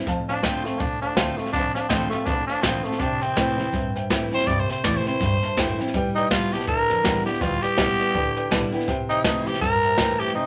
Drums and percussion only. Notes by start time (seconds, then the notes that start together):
0.07 kick, snare
0.29 snare
0.43 kick, snare, hi-hat pedal
0.65 snare
0.80 kick, snare
1.02 snare
1.17 kick, snare, hi-hat pedal
1.39 snare
1.46 snare
1.53 kick, snare
1.75 snare
1.90 kick, snare, hi-hat pedal
2.12 snare
2.27 kick, snare
2.49 snare
2.63 kick, snare, hi-hat pedal
2.85 snare
2.92 snare
2.99 kick, snare
3.22 snare
3.37 kick, snare, hi-hat pedal
3.59 snare
3.74 kick, snare
3.96 snare
4.10 kick, snare, hi-hat pedal
4.32 snare
4.40 snare
4.47 kick, snare
4.69 snare
4.84 kick, snare, hi-hat pedal
5.06 snare
5.21 kick, snare
5.42 snare
5.57 kick, snare, hi-hat pedal
5.79 snare
5.87 snare
5.94 kick, snare
6.17 snare
6.31 kick, snare, hi-hat pedal
6.53 snare
6.60 snare
6.67 kick, snare
6.90 snare
7.04 kick, snare, hi-hat pedal
7.26 snare
7.34 snare
7.41 kick, snare
7.63 snare
7.78 kick, snare, hi-hat pedal
8.00 snare
8.15 kick, snare
8.36 snare
8.51 kick, snare, hi-hat pedal
8.73 snare
8.80 snare
8.88 kick, snare
9.10 snare
9.24 kick, snare, hi-hat pedal
9.46 snare
9.54 snare
9.61 kick, snare
9.83 snare
9.98 kick, snare, hi-hat pedal
10.20 snare
10.27 snare